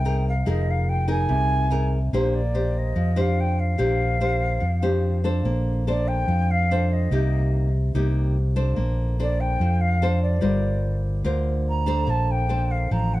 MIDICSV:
0, 0, Header, 1, 4, 480
1, 0, Start_track
1, 0, Tempo, 414938
1, 536, Time_signature, 4, 2, 24, 8
1, 15270, End_track
2, 0, Start_track
2, 0, Title_t, "Flute"
2, 0, Program_c, 0, 73
2, 0, Note_on_c, 0, 79, 92
2, 314, Note_off_c, 0, 79, 0
2, 332, Note_on_c, 0, 77, 84
2, 538, Note_off_c, 0, 77, 0
2, 564, Note_on_c, 0, 75, 90
2, 816, Note_on_c, 0, 77, 90
2, 833, Note_off_c, 0, 75, 0
2, 1030, Note_on_c, 0, 79, 96
2, 1047, Note_off_c, 0, 77, 0
2, 1263, Note_off_c, 0, 79, 0
2, 1268, Note_on_c, 0, 80, 109
2, 2176, Note_off_c, 0, 80, 0
2, 2491, Note_on_c, 0, 72, 77
2, 2713, Note_on_c, 0, 74, 86
2, 2730, Note_off_c, 0, 72, 0
2, 3215, Note_on_c, 0, 75, 89
2, 3232, Note_off_c, 0, 74, 0
2, 3707, Note_on_c, 0, 77, 81
2, 3724, Note_off_c, 0, 75, 0
2, 3935, Note_on_c, 0, 79, 93
2, 3952, Note_off_c, 0, 77, 0
2, 4159, Note_on_c, 0, 77, 86
2, 4176, Note_off_c, 0, 79, 0
2, 6070, Note_off_c, 0, 77, 0
2, 6804, Note_on_c, 0, 74, 87
2, 7032, Note_on_c, 0, 79, 102
2, 7049, Note_off_c, 0, 74, 0
2, 7528, Note_on_c, 0, 77, 93
2, 7545, Note_off_c, 0, 79, 0
2, 8015, Note_on_c, 0, 75, 78
2, 8032, Note_off_c, 0, 77, 0
2, 8958, Note_off_c, 0, 75, 0
2, 10665, Note_on_c, 0, 74, 91
2, 10877, Note_on_c, 0, 79, 98
2, 10895, Note_off_c, 0, 74, 0
2, 11348, Note_on_c, 0, 77, 97
2, 11366, Note_off_c, 0, 79, 0
2, 11819, Note_off_c, 0, 77, 0
2, 11826, Note_on_c, 0, 74, 79
2, 12736, Note_off_c, 0, 74, 0
2, 13521, Note_on_c, 0, 82, 97
2, 13995, Note_on_c, 0, 81, 96
2, 14012, Note_off_c, 0, 82, 0
2, 14241, Note_on_c, 0, 79, 96
2, 14259, Note_off_c, 0, 81, 0
2, 14703, Note_on_c, 0, 77, 83
2, 14721, Note_off_c, 0, 79, 0
2, 14946, Note_on_c, 0, 82, 91
2, 14964, Note_off_c, 0, 77, 0
2, 15199, Note_on_c, 0, 78, 93
2, 15217, Note_off_c, 0, 82, 0
2, 15270, Note_off_c, 0, 78, 0
2, 15270, End_track
3, 0, Start_track
3, 0, Title_t, "Nylon-string guitar"
3, 0, Program_c, 1, 24
3, 0, Note_on_c, 1, 48, 55
3, 58, Note_on_c, 1, 63, 53
3, 65, Note_on_c, 1, 68, 55
3, 67, Note_on_c, 1, 70, 62
3, 366, Note_off_c, 1, 63, 0
3, 369, Note_off_c, 1, 68, 0
3, 370, Note_off_c, 1, 70, 0
3, 511, Note_off_c, 1, 48, 0
3, 533, Note_on_c, 1, 53, 53
3, 535, Note_on_c, 1, 63, 56
3, 540, Note_on_c, 1, 68, 53
3, 547, Note_on_c, 1, 70, 59
3, 1216, Note_off_c, 1, 63, 0
3, 1217, Note_off_c, 1, 68, 0
3, 1223, Note_off_c, 1, 70, 0
3, 1245, Note_on_c, 1, 63, 59
3, 1249, Note_on_c, 1, 68, 58
3, 1254, Note_on_c, 1, 70, 65
3, 1472, Note_off_c, 1, 53, 0
3, 1491, Note_on_c, 1, 48, 55
3, 1933, Note_off_c, 1, 63, 0
3, 1934, Note_off_c, 1, 68, 0
3, 1935, Note_off_c, 1, 70, 0
3, 1972, Note_on_c, 1, 63, 54
3, 1978, Note_on_c, 1, 68, 56
3, 1985, Note_on_c, 1, 70, 60
3, 2283, Note_off_c, 1, 63, 0
3, 2286, Note_off_c, 1, 68, 0
3, 2290, Note_off_c, 1, 70, 0
3, 2430, Note_off_c, 1, 48, 0
3, 2466, Note_on_c, 1, 58, 53
3, 2471, Note_on_c, 1, 62, 57
3, 2476, Note_on_c, 1, 67, 49
3, 2480, Note_on_c, 1, 72, 61
3, 2774, Note_off_c, 1, 62, 0
3, 2775, Note_off_c, 1, 67, 0
3, 2775, Note_off_c, 1, 72, 0
3, 2945, Note_on_c, 1, 67, 48
3, 2949, Note_on_c, 1, 72, 55
3, 3398, Note_off_c, 1, 58, 0
3, 3421, Note_on_c, 1, 53, 53
3, 3623, Note_off_c, 1, 67, 0
3, 3625, Note_off_c, 1, 72, 0
3, 3657, Note_on_c, 1, 62, 55
3, 3660, Note_on_c, 1, 67, 58
3, 3668, Note_on_c, 1, 72, 56
3, 4339, Note_off_c, 1, 62, 0
3, 4342, Note_off_c, 1, 67, 0
3, 4344, Note_off_c, 1, 72, 0
3, 4356, Note_off_c, 1, 53, 0
3, 4372, Note_on_c, 1, 58, 55
3, 4380, Note_on_c, 1, 62, 51
3, 4380, Note_on_c, 1, 67, 56
3, 4386, Note_on_c, 1, 72, 61
3, 4819, Note_off_c, 1, 62, 0
3, 4822, Note_off_c, 1, 67, 0
3, 4824, Note_off_c, 1, 72, 0
3, 4864, Note_on_c, 1, 62, 45
3, 4869, Note_on_c, 1, 67, 46
3, 4875, Note_on_c, 1, 72, 55
3, 5313, Note_off_c, 1, 58, 0
3, 5325, Note_on_c, 1, 53, 51
3, 5339, Note_off_c, 1, 62, 0
3, 5341, Note_off_c, 1, 67, 0
3, 5344, Note_off_c, 1, 72, 0
3, 5579, Note_on_c, 1, 62, 48
3, 5584, Note_on_c, 1, 72, 59
3, 5585, Note_on_c, 1, 67, 54
3, 6022, Note_off_c, 1, 62, 0
3, 6022, Note_off_c, 1, 72, 0
3, 6023, Note_off_c, 1, 67, 0
3, 6061, Note_on_c, 1, 62, 64
3, 6067, Note_on_c, 1, 69, 59
3, 6073, Note_on_c, 1, 72, 57
3, 6269, Note_off_c, 1, 53, 0
3, 6306, Note_on_c, 1, 58, 53
3, 6743, Note_off_c, 1, 62, 0
3, 6746, Note_off_c, 1, 69, 0
3, 6747, Note_off_c, 1, 72, 0
3, 6793, Note_on_c, 1, 62, 50
3, 6797, Note_on_c, 1, 69, 46
3, 6803, Note_on_c, 1, 72, 52
3, 7240, Note_off_c, 1, 58, 0
3, 7267, Note_on_c, 1, 53, 51
3, 7709, Note_off_c, 1, 62, 0
3, 7710, Note_off_c, 1, 69, 0
3, 7711, Note_off_c, 1, 72, 0
3, 7763, Note_on_c, 1, 62, 57
3, 7769, Note_on_c, 1, 69, 58
3, 7771, Note_on_c, 1, 72, 57
3, 8194, Note_off_c, 1, 62, 0
3, 8196, Note_off_c, 1, 69, 0
3, 8198, Note_off_c, 1, 72, 0
3, 8200, Note_off_c, 1, 53, 0
3, 8229, Note_on_c, 1, 48, 54
3, 8237, Note_on_c, 1, 58, 50
3, 8242, Note_on_c, 1, 63, 55
3, 8245, Note_on_c, 1, 67, 55
3, 8874, Note_off_c, 1, 58, 0
3, 8877, Note_off_c, 1, 63, 0
3, 8877, Note_off_c, 1, 67, 0
3, 9161, Note_off_c, 1, 48, 0
3, 9194, Note_on_c, 1, 63, 53
3, 9197, Note_on_c, 1, 48, 57
3, 9198, Note_on_c, 1, 58, 51
3, 9210, Note_on_c, 1, 67, 59
3, 9664, Note_off_c, 1, 63, 0
3, 9667, Note_off_c, 1, 58, 0
3, 9672, Note_off_c, 1, 67, 0
3, 9902, Note_on_c, 1, 62, 59
3, 9902, Note_on_c, 1, 69, 57
3, 9909, Note_on_c, 1, 72, 70
3, 10125, Note_off_c, 1, 48, 0
3, 10138, Note_on_c, 1, 58, 53
3, 10582, Note_off_c, 1, 69, 0
3, 10583, Note_off_c, 1, 62, 0
3, 10586, Note_off_c, 1, 72, 0
3, 10637, Note_on_c, 1, 62, 55
3, 10641, Note_on_c, 1, 69, 48
3, 10644, Note_on_c, 1, 72, 54
3, 11075, Note_off_c, 1, 58, 0
3, 11118, Note_on_c, 1, 53, 57
3, 11550, Note_off_c, 1, 62, 0
3, 11551, Note_off_c, 1, 69, 0
3, 11554, Note_off_c, 1, 72, 0
3, 11590, Note_on_c, 1, 62, 58
3, 11598, Note_on_c, 1, 69, 55
3, 11604, Note_on_c, 1, 72, 66
3, 12026, Note_off_c, 1, 62, 0
3, 12031, Note_off_c, 1, 69, 0
3, 12033, Note_off_c, 1, 72, 0
3, 12036, Note_off_c, 1, 53, 0
3, 12041, Note_on_c, 1, 55, 52
3, 12049, Note_on_c, 1, 65, 53
3, 12052, Note_on_c, 1, 70, 52
3, 12056, Note_on_c, 1, 72, 54
3, 12974, Note_off_c, 1, 65, 0
3, 12977, Note_off_c, 1, 72, 0
3, 12978, Note_off_c, 1, 70, 0
3, 12986, Note_off_c, 1, 55, 0
3, 13008, Note_on_c, 1, 50, 56
3, 13008, Note_on_c, 1, 65, 57
3, 13014, Note_on_c, 1, 70, 53
3, 13020, Note_on_c, 1, 72, 56
3, 13693, Note_off_c, 1, 65, 0
3, 13698, Note_off_c, 1, 70, 0
3, 13699, Note_off_c, 1, 72, 0
3, 13723, Note_on_c, 1, 62, 62
3, 13733, Note_on_c, 1, 69, 61
3, 13739, Note_on_c, 1, 72, 66
3, 13949, Note_off_c, 1, 50, 0
3, 13960, Note_on_c, 1, 58, 56
3, 14411, Note_off_c, 1, 62, 0
3, 14416, Note_off_c, 1, 69, 0
3, 14419, Note_off_c, 1, 72, 0
3, 14450, Note_on_c, 1, 62, 46
3, 14455, Note_on_c, 1, 69, 45
3, 14461, Note_on_c, 1, 72, 50
3, 14904, Note_off_c, 1, 58, 0
3, 14938, Note_on_c, 1, 53, 52
3, 15270, Note_off_c, 1, 53, 0
3, 15270, Note_off_c, 1, 62, 0
3, 15270, Note_off_c, 1, 69, 0
3, 15270, Note_off_c, 1, 72, 0
3, 15270, End_track
4, 0, Start_track
4, 0, Title_t, "Fingered electric bass"
4, 0, Program_c, 2, 33
4, 0, Note_on_c, 2, 36, 85
4, 488, Note_off_c, 2, 36, 0
4, 538, Note_on_c, 2, 29, 78
4, 1451, Note_off_c, 2, 29, 0
4, 1498, Note_on_c, 2, 36, 82
4, 2411, Note_off_c, 2, 36, 0
4, 2462, Note_on_c, 2, 34, 82
4, 3374, Note_off_c, 2, 34, 0
4, 3421, Note_on_c, 2, 41, 81
4, 4334, Note_off_c, 2, 41, 0
4, 4387, Note_on_c, 2, 34, 83
4, 5297, Note_off_c, 2, 34, 0
4, 5342, Note_on_c, 2, 41, 86
4, 6255, Note_off_c, 2, 41, 0
4, 6294, Note_on_c, 2, 34, 82
4, 7211, Note_off_c, 2, 34, 0
4, 7261, Note_on_c, 2, 41, 81
4, 8175, Note_off_c, 2, 41, 0
4, 8222, Note_on_c, 2, 36, 79
4, 9135, Note_off_c, 2, 36, 0
4, 9191, Note_on_c, 2, 36, 89
4, 10099, Note_off_c, 2, 36, 0
4, 10153, Note_on_c, 2, 34, 87
4, 11060, Note_off_c, 2, 34, 0
4, 11106, Note_on_c, 2, 41, 93
4, 12016, Note_off_c, 2, 41, 0
4, 12055, Note_on_c, 2, 31, 85
4, 12970, Note_off_c, 2, 31, 0
4, 13004, Note_on_c, 2, 38, 84
4, 13924, Note_off_c, 2, 38, 0
4, 13967, Note_on_c, 2, 34, 83
4, 14885, Note_off_c, 2, 34, 0
4, 14936, Note_on_c, 2, 33, 90
4, 15270, Note_off_c, 2, 33, 0
4, 15270, End_track
0, 0, End_of_file